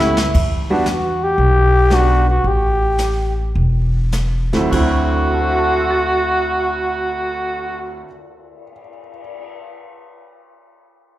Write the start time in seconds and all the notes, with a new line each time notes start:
Already playing: C#2 A3 B3 C#4 E4 G4
0.00 snare
0.17 snare
0.34 E2, brush sweep, kick, crash
0.70 G3 B3 D4 F#4
0.86 snare, hi-hat pedal
0.90 F#4
1.24 G4
1.38 B1, brush sweep
1.90 G3 B3 D4 F#4, snare, hi-hat pedal
1.94 F#4
2.30 F#4
2.44 A1 G4, brush sweep
2.98 snare, hi-hat pedal
3.55 E1, brush sweep
4.12 snare, hi-hat pedal
4.53 D2 D#2 F#3 A3 C4 E4, snare
4.71 D2 D3 F#3 C4 E4 F#4, kick, crash
5.14 cymbal swell
5.34 A4
5.41 C5
5.49 E5
5.58 A5
5.69 C6
5.79 E6
5.91 A6